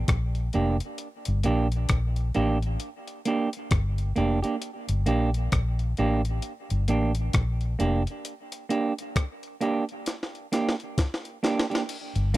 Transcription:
0.08 A#1, kick, cross-stick, closed hi-hat
0.35 closed hi-hat
0.53 F1 A#3 D4 G4, closed hi-hat
0.80 closed hi-hat
0.98 closed hi-hat
1.25 G1, closed hi-hat
1.43 A#1 A#3 D4 G4, closed hi-hat
1.72 closed hi-hat
1.89 A#1, kick, cross-stick, closed hi-hat
2.16 closed hi-hat
2.34 A1 A#3 D4 G4, closed hi-hat
2.62 closed hi-hat
2.80 closed hi-hat
3.08 closed hi-hat
3.25 A#3 D4 G4, closed hi-hat
3.53 closed hi-hat
3.71 G1, kick, cross-stick, closed hi-hat
3.98 closed hi-hat
4.16 F1 A#3 D4 G4, closed hi-hat
4.43 A#3 D4 G4, closed hi-hat
4.62 closed hi-hat
4.89 G1, closed hi-hat
5.06 A#1 A#3 D4 G4, closed hi-hat
5.34 closed hi-hat
5.52 A#1, kick, cross-stick, closed hi-hat
5.79 closed hi-hat
5.97 A1 A#3 D4 G4, closed hi-hat
6.25 closed hi-hat
6.42 closed hi-hat
6.70 G1, closed hi-hat
6.88 A1 A#3 D4 G4, closed hi-hat
7.15 closed hi-hat
7.33 A#1, kick, cross-stick, closed hi-hat
7.61 closed hi-hat
7.79 F1 A#3 D4 G4, closed hi-hat
8.07 closed hi-hat
8.25 closed hi-hat
8.52 closed hi-hat
8.69 A#3 D4 G4, closed hi-hat
8.98 closed hi-hat
9.16 kick, cross-stick, closed hi-hat
9.43 closed hi-hat
9.61 A#3 D4 G4, closed hi-hat
9.89 closed hi-hat
10.06 snare, closed hi-hat
10.23 snare
10.35 closed hi-hat
10.52 A#3 D4 G4, snare, closed hi-hat
10.69 snare
10.80 closed hi-hat
10.98 kick, snare, closed hi-hat
11.14 snare
11.25 closed hi-hat
11.43 A#3 D4 G4, snare, closed hi-hat
11.59 snare
11.70 A#3 D4 G4, closed hi-hat
11.75 snare
11.89 closed hi-hat, crash
12.16 G1, closed hi-hat
12.34 A#1 A#3

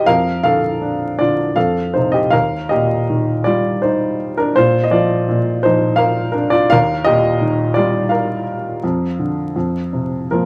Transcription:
0.06 F2 A#4 F5
0.43 D3 A4 F5
0.81 D4
1.19 D3 F4 D5
1.56 F2 A4 F5
1.94 C3 D#4 C5
2.12 G4 D#5
2.30 D#2 A#4 F5
2.69 A#2 G4 D#5
3.10 D#3
3.44 G3 F4 D5
3.82 D#4 C5
4.37 D4 A#4
4.55 A#2 F4 C5
4.84 D#5
4.91 F3 F4 D5
5.29 A#2
5.63 F3 D#4 C5
5.96 A#4 F5
6.32 D4 A#4
6.50 F4 D5
6.70 D#2 A#4 F5
7.04 A#2 G4 D#5
7.41 D#3
7.74 G3 F4 D5
8.09 A#4 F5
8.84 F2
9.19 D3
9.56 F2
9.93 C3
10.31 F3 A#3 F4 A#4

